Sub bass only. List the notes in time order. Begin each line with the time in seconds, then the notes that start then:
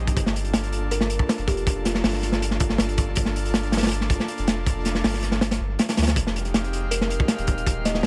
Already playing: A#1
0.16 G1
1.38 F1
2.04 G1
2.60 G1
2.79 G1
3.17 G1
4.39 F1
5.04 G1
5.60 G1
5.98 D2
6.16 F1
7.38 D#1